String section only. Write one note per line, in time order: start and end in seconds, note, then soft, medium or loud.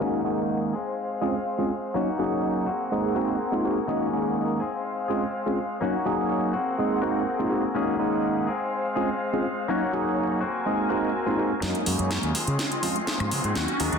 0.00 0.73 D#4 medium
0.00 0.72 G#4 medium
0.00 0.72 A#4 medium
0.00 0.71 F#5 medium
0.74 1.93 C5 medium
0.74 1.93 F5 medium
1.95 2.67 D#4 medium
1.95 2.67 C#5 medium
1.95 4.58 F#5 medium
2.67 3.87 C4 medium
2.67 4.59 G#4 medium
2.67 4.59 A#4 medium
3.88 4.60 D#4 medium
4.60 5.80 C5 medium
4.60 5.80 F5 medium
5.82 6.54 D#4 medium
5.82 6.54 C#5 medium
5.82 7.74 F#5 medium
6.55 7.74 C4 medium
6.55 8.46 G#4 medium
6.55 7.75 A#4 medium
7.76 8.48 D#4 medium
7.76 8.47 A#4 medium
7.76 8.48 F#5 medium
8.49 9.68 C5 medium
8.49 9.68 F5 medium
9.70 10.41 D#4 medium
9.70 10.41 C#5 medium
9.70 10.41 F#5 medium
10.42 11.62 F#4 medium
10.42 11.62 A#4 medium
10.42 11.62 C5 medium
10.42 11.61 G#5 medium
11.63 12.35 D#4 medium
11.63 12.35 A#4 medium
11.63 12.34 G#5 medium
12.35 13.55 F4 medium
12.35 13.55 C6 medium
13.56 13.99 F#4 medium
13.56 13.99 D#5 medium
13.56 13.99 C#6 medium